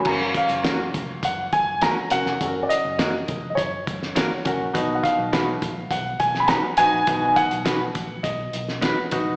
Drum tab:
CC |x---------------|----------------|----------------|----------------|
HH |--xxx-x-x-x-x-x-|x-x-x-x-x-x-x-x-|x-x-x-x-x-x-x-x-|x-xxx-x-x-x-x-x-|
SD |----o-------o--o|----o------oo---|----o------oo---|----o------oo---|
BD |o-o---o-o-o-----|o-----o-o-o---o-|o-o---o-o-o-----|o-o---o-o-----o-|